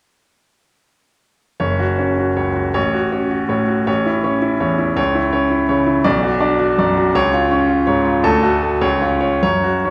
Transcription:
1.60 2.72 F#1 medium
1.60 1.91 C#5 medium
1.79 2.10 F#4 medium
1.98 2.30 C#4 soft
1.98 2.30 C#5 soft
2.18 2.49 F#4 soft
2.37 2.68 C#2 soft
2.37 2.67 C#5 medium
2.56 2.75 F#4 medium
2.74 3.83 A1 medium
2.74 3.05 C#5 medium
2.93 3.23 F#4 medium
3.12 3.42 C#4 soft
3.12 3.42 C#5 medium
3.31 3.61 F#4 medium
3.49 3.79 A2 medium
3.49 3.79 C#5 medium
3.68 3.87 F#4 medium
3.87 4.94 A1 medium
3.87 4.17 C#5 medium
4.06 4.36 E4 medium
4.24 4.54 C#4 medium
4.24 4.54 C#5 medium
4.42 4.72 E4 medium
4.60 4.90 E2 medium
4.60 4.90 C#5 medium
4.78 4.97 E4 medium
4.96 6.01 C#2 medium
4.96 5.26 C#5 medium
5.15 5.44 E4 medium
5.33 5.62 C#4 medium
5.33 5.62 C#5 medium
5.50 5.79 E4 medium
5.69 5.98 C#3 medium
5.69 5.98 C#5 medium
5.86 6.05 E4 medium
6.04 7.11 B1 medium
6.04 6.34 D5 medium
6.23 6.52 F#4 medium
6.40 6.70 D4 medium
6.40 6.70 D5 medium
6.59 6.89 F#4 medium
6.78 7.07 F#2 medium
6.78 7.08 D5 medium
6.97 7.15 F#4 medium
7.15 8.21 C#2 medium
7.15 7.44 C#5 medium
7.33 7.62 F4 medium
7.51 7.80 C#4 medium
7.51 7.80 C#5 medium
7.69 7.98 F4 medium
7.87 8.17 G#2 medium
7.87 8.17 C#5 medium
8.05 8.24 F4 medium
8.24 8.80 D2 medium
8.24 8.55 A4 medium
8.43 8.74 A3 medium
8.43 8.74 F#4 medium
8.63 8.82 A4 medium
8.81 9.41 C#2 medium
8.81 9.14 C#5 medium
9.01 9.34 C#4 medium
9.01 9.34 F4 medium
9.21 9.41 C#5 medium
9.43 9.90 F#2 medium
9.43 9.76 C#5 medium
9.63 9.90 F#4 medium
9.85 9.90 C#4 medium
9.85 9.90 C#5 medium

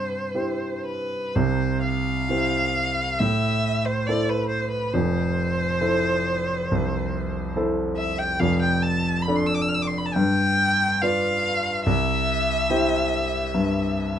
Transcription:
0.00 0.32 G2 soft
0.00 0.35 E4 soft
0.00 0.35 G4 soft
0.00 0.36 C5 soft
0.00 0.85 C5 soft
0.35 1.31 E4 soft
0.35 1.31 G4 soft
0.35 1.31 C5 soft
0.86 1.37 B4 medium
1.35 2.27 C2 soft
1.35 2.27 C3 soft
1.35 1.83 C5 medium
1.83 3.20 F5 medium
2.29 3.15 E4 soft
2.29 3.15 G4 soft
2.29 3.15 C5 soft
3.19 4.06 A2 medium
3.19 3.87 E5 medium
3.86 4.09 C5 medium
4.07 4.91 E4 soft
4.07 4.91 A4 soft
4.07 4.91 C5 soft
4.07 4.31 D5 medium
4.30 4.49 B4 medium
4.49 4.71 C5 medium
4.71 4.95 B4 medium
4.94 5.79 F1 soft
4.94 5.80 F2 medium
4.94 7.56 C5 medium
5.81 6.66 E4 soft
5.81 6.66 A4 soft
5.81 6.66 C5 soft
6.71 7.54 C2 soft
7.56 8.37 E4 soft
7.56 8.38 A4 soft
7.56 8.38 C5 soft
7.97 8.20 E5 medium
8.19 8.41 G5 medium
8.40 9.25 F1 soft
8.40 9.26 F2 medium
8.40 8.61 F5 medium
8.62 8.84 G5 medium
8.83 9.24 A5 medium
9.22 9.37 B5 medium
9.28 10.12 D4 soft
9.28 10.12 A4 soft
9.28 10.12 D5 soft
9.36 9.48 C6 medium
9.47 9.56 E6 medium
9.55 9.63 D6 medium
9.62 9.70 E6 medium
9.69 9.76 F6 medium
9.75 9.84 E6 medium
9.82 9.89 D6 soft
9.87 10.00 C6 medium
9.98 10.08 B5 medium
10.06 10.15 A5 medium
10.14 11.00 G2 medium
10.14 11.04 G5 medium
11.02 11.83 F4 soft
11.02 11.83 B4 soft
11.02 11.83 D5 soft
11.02 11.84 F5 medium
11.85 12.67 C2 medium
11.85 14.19 E5 medium
12.70 13.50 E4 medium
12.70 13.50 G4 soft
12.70 13.50 C5 medium
13.54 14.19 G2 medium

